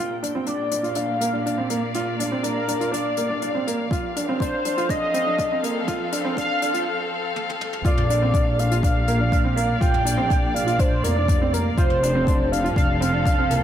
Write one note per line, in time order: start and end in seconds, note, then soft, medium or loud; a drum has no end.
0.00 1.89 A#1 medium
0.00 3.91 A#2 medium
0.00 1.31 C4 medium
0.00 0.14 F4 medium
0.00 1.46 G5 medium
0.23 0.31 D4 medium
0.23 closed hi-hat medium
0.35 3.91 A#3 medium
0.35 0.43 C4 medium
0.46 0.63 D4 medium
0.46 0.97 D5 medium
0.46 closed hi-hat soft
0.71 0.80 D4 medium
0.71 closed hi-hat medium
0.79 0.92 F4 medium
0.79 13.63 F5 medium
0.84 closed hi-hat soft
0.89 4.90 D5 medium
0.95 1.13 D4 medium
0.95 1.94 F5 loud
0.95 closed hi-hat medium
1.21 1.29 A#3 medium
1.21 closed hi-hat medium
1.33 1.42 D4 medium
1.46 1.54 D4 medium
1.46 closed hi-hat medium
1.58 1.66 C4 medium
1.70 1.87 A#3 medium
1.70 closed hi-hat medium
1.94 3.12 A#1 medium
1.94 2.12 F4 medium
1.94 closed hi-hat medium
2.20 2.28 D4 medium
2.20 closed hi-hat medium
2.32 2.40 C4 medium
2.43 2.60 D4 medium
2.43 2.93 A#4 medium
2.43 closed hi-hat medium
2.68 2.76 D4 medium
2.68 closed hi-hat medium
2.80 2.89 F4 medium
2.80 closed hi-hat soft
2.92 3.09 D4 medium
2.92 3.91 D5 loud
2.92 closed hi-hat medium
3.17 3.86 F1 medium
3.17 3.26 A#3 medium
3.17 closed hi-hat medium
3.30 3.38 D4 medium
3.42 3.50 D4 medium
3.42 closed hi-hat medium
3.55 3.63 C4 medium
3.67 3.84 A#3 medium
3.67 closed hi-hat medium
3.90 4.85 F1 medium
3.90 7.84 F3 medium
3.90 4.08 F4 medium
3.90 kick loud
3.90 closed hi-hat medium
4.12 9.06 C4 medium
4.12 4.24 D4 medium
4.12 closed hi-hat medium
4.29 4.37 C4 medium
4.40 4.57 D4 medium
4.40 4.92 C5 loud
4.40 kick loud
4.40 closed hi-hat medium
4.65 4.74 D4 medium
4.65 closed hi-hat medium
4.75 4.86 F4 medium
4.75 9.43 A4 medium
4.75 closed hi-hat soft
4.89 5.34 F1 medium
4.89 5.06 D4 medium
4.89 5.88 D#5 loud
4.89 kick loud
4.89 closed hi-hat medium
5.14 5.22 C4 medium
5.14 closed hi-hat medium
5.27 5.35 D4 medium
5.39 5.47 D4 medium
5.39 kick loud
5.39 closed hi-hat medium
5.52 5.60 C4 medium
5.63 5.82 C2 medium
5.63 5.80 A#3 medium
5.63 closed hi-hat medium
5.88 6.86 F1 loud
5.88 6.05 F4 medium
5.88 kick loud
5.88 closed hi-hat medium
6.12 6.21 D4 medium
6.12 closed hi-hat medium
6.25 6.33 C4 medium
6.37 6.54 D4 medium
6.37 6.83 F5 loud
6.37 kick loud
6.37 closed hi-hat medium
6.62 6.70 D4 medium
6.62 closed hi-hat medium
6.74 6.82 F4 medium
6.74 closed hi-hat soft
7.36 high tom medium
7.49 high tom medium
7.61 mid tom medium
7.73 mid tom medium
7.85 9.76 A#1 loud
7.85 11.78 A#2 medium
7.85 8.02 F4 medium
7.85 8.61 D5 loud
7.85 kick loud
7.85 closed hi-hat medium
7.97 11.78 A#3 medium
7.97 mid tom medium
8.10 8.18 D4 medium
8.10 closed hi-hat medium
8.22 8.30 C4 medium
8.34 8.51 D4 medium
8.34 kick loud
8.34 closed hi-hat medium
8.59 8.67 D4 medium
8.59 8.84 F5 medium
8.59 closed hi-hat medium
8.71 8.80 F4 medium
8.71 closed hi-hat soft
8.83 9.00 D4 medium
8.83 13.25 D5 medium
8.83 9.83 F5 loud
8.83 kick loud
8.83 closed hi-hat medium
9.08 9.16 A#3 medium
9.08 closed hi-hat medium
9.20 9.28 D4 medium
9.32 9.41 D4 medium
9.32 kick loud
9.32 closed hi-hat medium
9.44 9.53 C4 medium
9.56 9.73 A#3 medium
9.56 closed hi-hat medium
9.81 10.99 A#1 loud
9.81 9.98 F4 medium
9.81 10.56 G5 loud
9.81 kick loud
9.81 closed hi-hat medium
9.94 mid tom medium
10.05 10.14 D4 medium
10.05 closed hi-hat medium
10.17 10.26 C4 medium
10.30 10.47 D4 medium
10.30 kick loud
10.30 closed hi-hat medium
10.54 10.63 D4 medium
10.54 10.81 F5 medium
10.54 closed hi-hat medium
10.67 10.75 F4 medium
10.67 closed hi-hat soft
10.79 10.96 D4 medium
10.79 11.05 C5 medium
10.79 kick loud
10.79 closed hi-hat medium
11.04 11.73 F1 medium
11.04 11.12 A#3 medium
11.04 11.55 D5 loud
11.04 closed hi-hat medium
11.16 11.25 D4 medium
11.28 11.37 D4 medium
11.28 kick loud
11.28 closed hi-hat medium
11.41 11.50 C4 medium
11.53 11.70 A#3 medium
11.53 11.77 A#4 medium
11.53 closed hi-hat medium
11.77 12.71 F1 loud
11.77 13.63 F3 medium
11.77 11.95 F4 medium
11.77 12.54 C5 loud
11.77 kick loud
11.77 closed hi-hat medium
11.90 mid tom medium
11.94 13.63 C4 medium
12.03 12.11 D4 medium
12.03 closed hi-hat medium
12.15 12.23 C4 medium
12.19 13.63 A4 medium
12.27 12.44 D4 medium
12.27 kick loud
12.27 closed hi-hat medium
12.52 12.60 D4 medium
12.52 12.76 F5 loud
12.52 closed hi-hat medium
12.64 12.72 F4 medium
12.64 closed hi-hat soft
12.76 13.21 F1 medium
12.76 12.93 D4 medium
12.76 13.63 F5 loud
12.76 kick loud
12.76 closed hi-hat medium
13.01 13.09 C4 medium
13.01 closed hi-hat medium
13.13 13.22 D4 medium
13.25 13.34 D4 medium
13.25 kick loud
13.25 closed hi-hat medium
13.38 13.47 C4 medium
13.50 13.63 C2 medium
13.50 13.63 A#3 medium
13.50 closed hi-hat medium